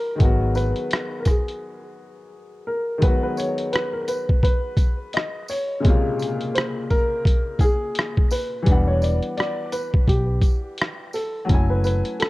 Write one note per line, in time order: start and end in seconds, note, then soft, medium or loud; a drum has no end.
0.00 0.14 E3 medium
0.00 0.15 G3 medium
0.00 0.16 B3 medium
0.00 0.17 D4 medium
0.00 0.57 A#4 loud
0.00 0.18 F#5 medium
0.15 2.96 D#3 medium
0.15 2.97 G#3 medium
0.20 0.72 G#1 loud
0.20 2.98 F#3 medium
0.20 3.00 B3 medium
0.20 kick loud
0.20 closed hi-hat medium
0.25 3.01 F#4 medium
0.55 1.22 B4 loud
0.55 closed hi-hat medium
0.55 tambourine medium
0.76 closed hi-hat soft
0.91 cross-stick loud
0.91 closed hi-hat medium
1.20 1.26 A#4 medium
1.25 2.63 G#4 medium
1.25 kick medium
1.25 cross-stick soft
1.25 closed hi-hat medium
1.25 tambourine medium
1.48 closed hi-hat soft
2.67 3.03 A#4 medium
2.98 5.79 D#3 medium
2.98 5.80 G#3 medium
2.98 closed hi-hat medium
3.02 5.81 F#3 medium
3.02 5.82 B3 medium
3.02 3.22 B4 loud
3.02 kick loud
3.07 5.83 F#4 medium
3.23 3.37 B4 medium
3.37 3.74 C#5 loud
3.37 closed hi-hat medium
3.37 tambourine soft
3.58 closed hi-hat soft
3.73 3.92 B4 loud
3.73 cross-stick loud
3.73 closed hi-hat medium
3.93 4.00 A#4 medium
4.02 4.08 A#4 medium
4.08 4.41 B4 loud
4.08 closed hi-hat medium
4.08 tambourine medium
4.29 kick medium
4.43 5.16 B4 loud
4.43 kick medium
4.43 closed hi-hat medium
4.77 kick medium
4.77 closed hi-hat medium
4.77 tambourine soft
5.13 5.50 D#5 medium
5.13 cross-stick loud
5.13 closed hi-hat medium
5.48 6.59 C#5 loud
5.48 open hi-hat soft
5.48 tambourine medium
5.80 8.61 C#3 medium
5.80 8.62 G#3 medium
5.85 8.63 A#2 medium
5.85 8.64 C3 medium
5.85 kick loud
5.85 closed hi-hat medium
5.89 8.65 F4 medium
6.19 closed hi-hat medium
6.19 tambourine medium
6.41 closed hi-hat soft
6.55 6.63 C5 loud
6.55 cross-stick loud
6.55 closed hi-hat medium
6.90 7.63 A#4 loud
6.90 kick medium
6.90 closed hi-hat medium
6.90 tambourine medium
7.25 kick loud
7.25 closed hi-hat medium
7.59 8.27 G#4 loud
7.59 kick medium
7.59 closed hi-hat medium
7.59 tambourine soft
7.95 cross-stick medium
7.95 closed hi-hat medium
8.17 kick medium
8.31 8.89 B4 medium
8.31 open hi-hat soft
8.31 tambourine medium
8.63 11.43 E3 medium
8.63 11.44 G3 medium
8.63 closed hi-hat medium
8.67 9.19 E1 loud
8.67 11.45 B3 medium
8.67 11.47 D4 medium
8.67 kick loud
8.72 11.48 F#5 medium
8.88 9.03 C#5 medium
9.02 9.35 D5 medium
9.02 closed hi-hat medium
9.02 tambourine medium
9.23 closed hi-hat medium
9.37 9.70 D5 loud
9.37 cross-stick loud
9.37 closed hi-hat medium
9.72 10.05 B4 medium
9.72 closed hi-hat medium
9.72 tambourine medium
9.94 kick medium
10.08 10.40 B1 medium
10.08 11.17 G4 medium
10.08 kick loud
10.08 closed hi-hat medium
10.41 kick medium
10.41 closed hi-hat medium
10.41 tambourine soft
10.78 cross-stick loud
10.78 closed hi-hat medium
11.13 11.66 A4 medium
11.13 open hi-hat soft
11.13 tambourine medium
11.45 12.30 F#3 medium
11.45 12.30 A3 medium
11.49 12.01 F#1 loud
11.49 12.30 C#4 medium
11.49 12.30 E4 medium
11.49 kick loud
11.49 closed hi-hat medium
11.54 12.30 G#5 medium
11.70 11.83 B4 medium
11.84 12.21 B4 medium
11.84 closed hi-hat medium
11.84 tambourine medium
12.05 closed hi-hat medium
12.20 12.30 A4 medium
12.20 cross-stick loud
12.20 closed hi-hat medium